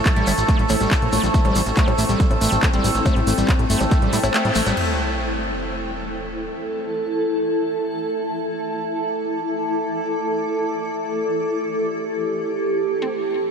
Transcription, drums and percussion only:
0.05 kick loud
0.05 clap loud
0.05 closed hi-hat medium
0.05 shekere soft
0.16 closed hi-hat soft
0.27 open hi-hat loud
0.27 percussion blips soft
0.27 shekere medium
0.38 closed hi-hat medium
0.38 shekere medium
0.48 kick loud
0.48 clap soft
0.48 closed hi-hat medium
0.48 shekere soft
0.59 closed hi-hat soft
0.69 open hi-hat loud
0.69 percussion blips medium
0.69 shekere loud
0.81 closed hi-hat medium
0.81 shekere soft
0.91 kick loud
0.91 clap loud
0.91 closed hi-hat medium
0.91 shekere soft
1.02 closed hi-hat soft
1.12 open hi-hat loud
1.12 percussion blips soft
1.12 shekere medium
1.23 closed hi-hat medium
1.23 shekere medium
1.34 kick loud
1.34 closed hi-hat medium
1.34 shekere soft
1.45 closed hi-hat soft
1.45 percussion blips soft
1.56 open hi-hat loud
1.56 shekere loud
1.66 closed hi-hat medium
1.66 shekere soft
1.76 kick loud
1.76 clap loud
1.76 closed hi-hat medium
1.76 shekere soft
1.88 closed hi-hat soft
1.88 percussion blips medium
1.98 open hi-hat loud
1.98 shekere loud
2.09 closed hi-hat medium
2.09 shekere soft
2.20 kick loud
2.20 closed hi-hat medium
2.20 shekere soft
2.31 closed hi-hat soft
2.31 percussion blips soft
2.41 open hi-hat loud
2.41 shekere medium
2.52 closed hi-hat medium
2.52 shekere soft
2.63 kick loud
2.63 clap loud
2.63 closed hi-hat medium
2.63 percussion blips soft
2.63 shekere soft
2.73 closed hi-hat soft
2.84 open hi-hat loud
2.84 shekere medium
2.95 closed hi-hat medium
2.95 shekere soft
3.06 kick loud
3.06 closed hi-hat medium
3.06 percussion blips medium
3.06 shekere soft
3.16 closed hi-hat soft
3.27 open hi-hat loud
3.27 shekere medium
3.38 closed hi-hat medium
3.38 shekere soft
3.48 kick loud
3.48 clap loud
3.48 closed hi-hat medium
3.48 percussion blips soft
3.48 shekere soft
3.59 closed hi-hat soft
3.70 open hi-hat loud
3.70 shekere medium
3.81 closed hi-hat medium
3.81 percussion blips soft
3.81 shekere medium
3.91 kick loud
3.91 clap soft
3.91 closed hi-hat medium
3.91 shekere soft
4.02 closed hi-hat soft
4.13 open hi-hat loud
4.13 shekere medium
4.23 closed hi-hat medium
4.23 percussion blips medium
4.23 shekere medium
4.34 clap loud
4.34 closed hi-hat medium
4.34 shekere soft
4.45 closed hi-hat soft
4.55 open hi-hat loud
4.55 shekere medium
4.66 closed hi-hat medium
4.66 percussion blips soft
4.66 shekere medium
4.77 crash medium

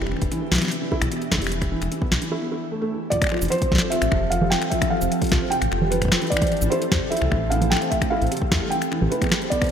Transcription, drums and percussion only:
0.02 finger snap soft
0.07 finger snap soft
0.12 finger snap soft
0.17 finger snap soft
0.22 kick loud
0.22 closed hi-hat soft
0.32 closed hi-hat medium
0.52 snare loud
0.55 snare medium
0.58 snare medium
0.62 snare medium
0.62 closed hi-hat medium
0.65 snare soft
0.68 snare soft
0.68 closed hi-hat medium
0.92 kick medium
1.02 finger snap medium
1.02 closed hi-hat medium
1.12 closed hi-hat medium
1.22 closed hi-hat soft
1.32 kick soft
1.32 snare loud
1.35 kick medium
1.38 kick medium
1.38 closed hi-hat soft
1.44 finger snap medium
1.44 closed hi-hat soft
1.47 closed hi-hat soft
1.49 closed hi-hat soft
1.52 closed hi-hat medium
1.62 finger snap soft
1.62 kick loud
1.62 closed hi-hat soft
1.82 finger snap soft
1.82 closed hi-hat medium
1.92 closed hi-hat medium
2.02 kick loud
2.12 snare loud
2.22 closed hi-hat medium
3.12 kick medium
3.12 closed hi-hat medium
3.14 kick soft
3.17 kick soft
3.19 finger snap medium
3.19 kick soft
3.19 closed hi-hat medium
3.22 finger snap medium
3.22 kick loud
3.27 finger snap medium
3.29 finger snap soft
3.32 finger snap soft
3.34 finger snap soft
3.37 finger snap soft
3.39 finger snap soft
3.39 closed hi-hat soft
3.39 shaker medium
3.45 closed hi-hat soft
3.48 closed hi-hat soft
3.52 closed hi-hat medium
3.55 closed hi-hat soft
3.58 kick loud
3.58 closed hi-hat soft
3.62 closed hi-hat medium
3.72 kick loud
3.72 snare medium
3.75 snare medium
3.78 snare medium
3.92 closed hi-hat medium
4.02 finger snap medium
4.02 closed hi-hat medium
4.12 finger snap medium
4.12 kick loud
4.32 closed hi-hat medium
4.42 low conga medium
4.52 snare loud
4.62 finger snap medium
4.62 closed hi-hat soft
4.72 kick medium
4.72 closed hi-hat medium
4.82 finger snap medium
4.82 kick loud
4.82 closed hi-hat medium
5.02 closed hi-hat soft
5.02 shaker medium
5.12 closed hi-hat medium
5.22 kick loud
5.22 closed hi-hat medium
5.24 closed hi-hat soft
5.27 closed hi-hat soft
5.29 kick loud
5.29 snare loud
5.29 closed hi-hat soft
5.52 closed hi-hat medium
5.62 finger snap medium
5.62 closed hi-hat medium
5.72 finger snap medium
5.82 low conga medium
5.92 closed hi-hat medium
6.02 finger snap medium
6.02 kick medium
6.02 closed hi-hat medium
6.05 kick medium
6.08 finger snap medium
6.08 kick medium
6.08 snare loud
6.22 closed hi-hat soft
6.27 closed hi-hat soft
6.32 kick medium
6.32 closed hi-hat medium
6.37 finger snap medium
6.37 closed hi-hat soft
6.42 kick loud
6.42 closed hi-hat soft
6.47 closed hi-hat soft
6.52 closed hi-hat soft
6.57 closed hi-hat soft
6.62 closed hi-hat soft
6.62 shaker medium
6.72 closed hi-hat medium
6.82 closed hi-hat medium
6.92 kick loud
6.92 snare loud
7.12 closed hi-hat medium
7.17 closed hi-hat medium
7.22 finger snap medium
7.32 finger snap medium
7.32 kick loud
7.52 closed hi-hat medium
7.62 closed hi-hat medium
7.62 low conga medium
7.72 snare loud
7.77 finger snap medium
7.82 closed hi-hat soft
7.92 kick medium
7.92 closed hi-hat medium
8.02 finger snap medium
8.02 kick loud
8.02 closed hi-hat medium
8.22 closed hi-hat soft
8.27 closed hi-hat soft
8.32 closed hi-hat medium
8.37 closed hi-hat medium
8.42 kick loud
8.52 kick loud
8.52 snare loud
8.72 closed hi-hat medium
8.82 finger snap soft
8.82 closed hi-hat medium
8.92 finger snap medium
9.02 low conga medium
9.12 closed hi-hat medium
9.22 finger snap soft
9.22 kick loud
9.22 closed hi-hat soft
9.24 finger snap soft
9.27 finger snap soft
9.29 finger snap soft
9.32 finger snap medium
9.32 snare loud
9.42 closed hi-hat soft
9.52 kick medium
9.52 closed hi-hat medium
9.62 finger snap medium
9.62 kick loud
9.62 closed hi-hat soft
9.64 closed hi-hat soft
9.67 closed hi-hat soft

